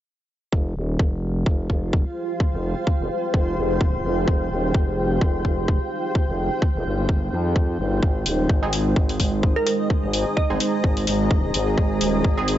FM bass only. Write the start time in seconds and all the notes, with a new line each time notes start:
0.53 F1
0.76 D#1
0.99 F1
1.46 F1
1.70 F1
2.53 F1
3.00 F1
3.34 F1
3.57 F1
4.04 F1
4.28 F1
4.51 D#1
4.74 F1
5.21 F1
5.45 F1
6.28 F1
6.75 F1
6.85 G1
7.32 F2
7.79 G1
8.03 G#1
8.26 D#1
8.49 G#1
8.96 G#1
9.20 G#1
10.03 G#1
10.50 G#1
10.84 G#1
11.07 G#1
11.54 G#1
11.78 G#1
12.01 D#1
12.24 G#1